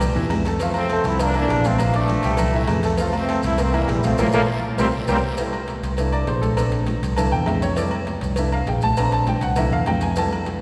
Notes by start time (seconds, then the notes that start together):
Already playing: C2 G3 A3 G4 G5
0.00 cowbell, high conga, low conga, low agogo, long guiro, maracas
0.15 E2 E3 E4 E5, high conga, low agogo, maracas
0.29 F2, cowbell, high conga, low timbale, low agogo, short guiro, maracas
0.45 A3 A4 A5, cowbell, short guiro, maracas
0.59 F3 A3 F4 F5, cowbell, high conga, low agogo, long guiro, maracas
0.74 A3 C4, high conga, low agogo, maracas
0.89 A3 A4 A5, cowbell, high conga, low timbale, short guiro, maracas
1.04 C2 C4 E4, cowbell, high conga, short guiro, maracas
1.19 A#3 D4 A#4 A#5, cowbell, high conga, low agogo, long guiro, maracas
1.34 E3 A#3 D4 E4 E5, high conga, low agogo
1.48 A#1, cowbell, high conga, low timbale, short guiro, maracas
1.64 F3 A3 C4 F4 F5, cowbell, high conga, short guiro, maracas
1.78 F3 A#3, cowbell, high conga, low agogo, long guiro, maracas
1.94 F3 A3 D4 D5 D6, cowbell, high conga, maracas
2.08 cowbell, high conga, low timbale, low agogo, short guiro, maracas
2.23 C2 G3 G4 G5, cowbell, short guiro, maracas
2.37 cowbell, high conga, low conga, low agogo, long guiro, maracas
2.53 E3 E4 E5, high conga, low agogo, maracas
2.67 F2, cowbell, high conga, low timbale, low agogo, short guiro, maracas
2.83 A3 A4 A5, cowbell, short guiro, maracas
2.97 F3 A3 F4 F5, cowbell, high conga, low agogo, long guiro, maracas
3.13 A3 C4, high conga, low agogo, maracas
3.28 A3 A4 A5, cowbell, high conga, low timbale, short guiro, maracas
3.43 C2 C4 E4, cowbell, high conga, short guiro, maracas
3.58 A3 A#3 C4 A#4 A#5, cowbell, high conga, low agogo, long guiro, maracas
3.73 E3 G3 A#3 E4 E5, low agogo, maracas
3.88 A#1 E3 G3, cowbell, high conga, low timbale, short guiro, maracas
4.03 F3 A3 C4 F4 F5, cowbell, high conga, short guiro, maracas
4.18 A#1 F3 A3 A#3 F4 A4 A#4, cowbell, high conga, high timbale, long guiro, maracas
4.32 A#1 F3 A3 A#3 F4 A4 A#4, cowbell, high conga, high timbale, long guiro, maracas
4.78 C2 G3 A#3 C4 G4 A#4 C5, cowbell, high conga, high timbale, long guiro, maracas
5.07 C2 G3 A#3 C4 G4 A#4 C5, cowbell, high conga, high timbale, long guiro, maracas
5.37 G3 A3 E4, cowbell, high conga, low agogo, maracas
5.53 high conga, low agogo, maracas
5.68 cowbell, high conga, low timbale, maracas
5.83 C2, cowbell, high conga, maracas
5.97 A3 A#3 D4 E4, cowbell, high conga, low agogo, maracas
6.12 D5, high conga, low agogo, maracas
6.27 A#1 C5, cowbell, high conga, low timbale, maracas
6.42 A4, cowbell, high conga, maracas
6.57 A3 C4 D4, cowbell, high conga, low agogo, maracas
6.72 cowbell, maracas
6.86 cowbell, high conga, low timbale, low agogo, maracas
7.03 C2, cowbell, maracas
7.16 A3 A#3 D4 E4 A5, cowbell, high conga, low conga, low agogo, maracas
7.32 E2 G5, high conga, low agogo, maracas
7.46 F2 E5, cowbell, high conga, low timbale, low agogo, maracas
7.62 C#5, cowbell, maracas
7.76 G3 A3 E4 D5, cowbell, high conga, low agogo, maracas
7.91 high conga, low agogo, maracas
8.07 cowbell, high conga, low timbale, maracas
8.21 C2, cowbell, high conga, maracas
8.36 A3 A#3 D4 E4 E5, cowbell, high conga, low agogo, maracas
8.52 F5, high conga, low agogo, maracas
8.66 A#1 G5, cowbell, high conga, low timbale, maracas
8.81 A5, cowbell, high conga, maracas
8.97 A3 C4 D4 A#5, cowbell, low agogo, maracas
9.12 A5, cowbell, high conga, maracas
9.27 G5, cowbell, high conga, low timbale, low agogo, maracas
9.41 C2 F#5, cowbell, maracas
9.56 A3 A#3 D4 E4 E5, cowbell, high conga, low conga, low agogo, maracas
9.71 E2 F5, high conga, low agogo, maracas
9.86 F2 G5, cowbell, high conga, low timbale, low agogo, maracas
10.01 G#5, cowbell, high conga, maracas
10.16 G3 A3 E4 A5, cowbell, high conga, low agogo, maracas
10.31 low agogo, maracas
10.45 cowbell, high conga, low timbale, maracas